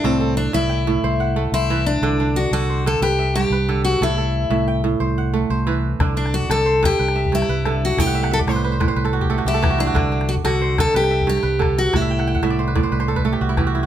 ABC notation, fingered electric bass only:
X:1
M:12/8
L:1/8
Q:3/8=121
K:Ador
V:1 name="Fingered electric bass" clef=bass
C,,3 C,,3 C,,3 C,,3 | C,,3 C,,3 C,,3 C,,3 | C,,3 C,,3 C,,3 C,,3 | C,,3 C,,3 C,,3 C,,3 |
C,,3 C,,3 C,,3 C,,3 | C,,3 C,,3 C,,3 C,,3 | C,,3 C,,3 C,,3 C,,3 |]